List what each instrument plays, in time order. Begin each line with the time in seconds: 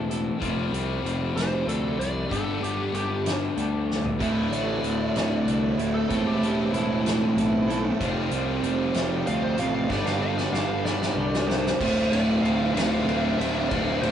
Already playing: picked electric bass E1, overdriven electric guitar A2 E3 A3 C4 E4 A4, clean electric guitar A3 C4
0.09 clean electric guitar A3 C4 E4 A4, closed hi-hat
0.41 picked electric bass F1, clean electric guitar F2 C3 F3 G3 C4 F4, kick, closed hi-hat
0.71 picked electric bass C2, clean electric guitar F3 G3 C4 F4, closed hi-hat
1.03 picked electric bass F1, clean electric guitar F3 G3 C4 F4, closed hi-hat
1.35 picked electric bass F1, clean electric guitar F3 G3 C4 F4, lead electric guitar C5, snare, closed hi-hat
1.66 picked electric bass D2, clean electric guitar F3 G3 C4 F4, lead electric guitar A4, closed hi-hat
1.98 picked electric bass C2, clean electric guitar F3 G3 C4 F4, lead electric guitar D5, closed hi-hat
2.29 picked electric bass G1, clean electric guitar G2 D3 G3 B3 D4 G4, lead electric guitar A4, kick, closed hi-hat
2.61 picked electric bass G1, clean electric guitar G3 B3 D4 G4, lead electric guitar G4, closed hi-hat
2.93 picked electric bass G1, clean electric guitar G3 B3 D4 G4, lead electric guitar G4, closed hi-hat
3.24 clean electric guitar G3 B3 D4 G4, snare, closed hi-hat
3.56 picked electric bass D2, clean electric guitar G3 B3 D4 G4, closed hi-hat
3.87 clean electric guitar G3 B3 D4 G4
3.91 snare
4.05 floor tom
4.19 picked electric bass D1, clean electric guitar D2 A2 D3 A3 E4, distorted electric guitar D2 A2 D3 A3 E4, kick, closed hi-hat
4.50 picked electric bass A1, clean electric guitar D3 A3 E4, lead electric guitar D5, closed hi-hat
4.82 picked electric bass D1, clean electric guitar A2 D3 A3 E4, closed hi-hat
5.14 picked electric bass D1, clean electric guitar D3 A3 E4, snare, closed hi-hat
5.46 picked electric bass C2, clean electric guitar A2 D3 A3 E4, closed hi-hat
5.77 picked electric bass D1, distorted electric guitar D2 A2 D3 A3 E4, clean electric guitar A3 E4, closed hi-hat
5.81 clean electric guitar D3
5.94 lead electric guitar A4
6.09 picked electric bass E1, distorted electric guitar A2 E3 A3 C4 E4 A4, clean electric guitar A2 E3 A3 C4 E4, kick, closed hi-hat
6.13 clean electric guitar A4
6.27 lead electric guitar G4
6.41 picked electric bass E1, clean electric guitar A3 C4 E4 A4, closed hi-hat
6.72 picked electric bass E1, clean electric guitar A3 C4 E4 A4, lead electric guitar E4, closed hi-hat
7.04 clean electric guitar A3 C4 E4 A4, snare, closed hi-hat
7.35 picked electric bass B1, clean electric guitar A3 C4 E4 A4, closed hi-hat
7.68 distorted electric guitar A2 E3 A3 C4 E4 A4, clean electric guitar A3 C4 E4 A4, closed hi-hat
7.99 picked electric bass F1, clean electric guitar F2 C3 F3 G3 C4 F4, distorted electric guitar F2 C3 F3 G3 C4 F4, kick, closed hi-hat
8.30 picked electric bass C2, clean electric guitar F3 G3 C4 F4, closed hi-hat
8.62 picked electric bass F1, clean electric guitar F3 G3 C4 F4, closed hi-hat
8.94 picked electric bass F1, clean electric guitar F3 G3 C4 F4, snare, closed hi-hat
9.25 picked electric bass D2, clean electric guitar F3 G3 C4 F4, lead electric guitar F5, closed hi-hat
9.44 lead electric guitar C5
9.57 picked electric bass A1, distorted electric guitar F2 C3 F3 G3 C4 F4, clean electric guitar F3 G3 C4 F4, lead electric guitar F5, closed hi-hat
9.75 lead electric guitar F5
9.88 picked electric bass G1, clean electric guitar G2 D3 G3 B3 D4 G4, distorted electric guitar G2 D3 G3 B3 D4 G4, lead electric guitar D5, kick, snare
10.06 lead electric guitar F5, snare
10.19 picked electric bass G1, clean electric guitar G3 B3 D4 G4, lead electric guitar F5
10.38 lead electric guitar D5, snare
10.52 picked electric bass G1, clean electric guitar G3 B3 D4 G4, lead electric guitar F5, snare
10.82 clean electric guitar G3 B3 D4 G4, lead electric guitar D5, snare
11.02 snare
11.14 picked electric bass C2, clean electric guitar G3 B3 D4 G4
11.34 snare
11.47 distorted electric guitar G2 D3 G3 B3 D4 G4, clean electric guitar G3 B3 D4 G4, lead electric guitar C5, snare
11.67 snare
11.80 picked electric bass D1, distorted electric guitar D2 A2 D3 A3 C4 F4, kick, crash
12.10 picked electric bass D1, distorted electric guitar D3 A3 C4 F4, lead electric guitar D5, ride
12.42 picked electric bass D1, overdriven electric guitar D3 A3 C4, lead electric guitar F5, ride
12.46 overdriven electric guitar F4
12.74 picked electric bass D1, distorted electric guitar D2 A2 D3 A3 C4 F4, lead electric guitar F5, ride
12.78 snare
13.06 picked electric bass D1, distorted electric guitar D3 A3 C4 F4, ride
13.21 lead electric guitar E5
13.38 picked electric bass D1, distorted electric guitar D3 A3 C4 F4, lead electric guitar E5, ride
13.69 picked electric bass D1, distorted electric guitar D2 A2 D3 A3 C4 F4, lead electric guitar D5, kick, ride
14.01 picked electric bass D1, distorted electric guitar D3 A3 C4 F4, lead electric guitar C5, ride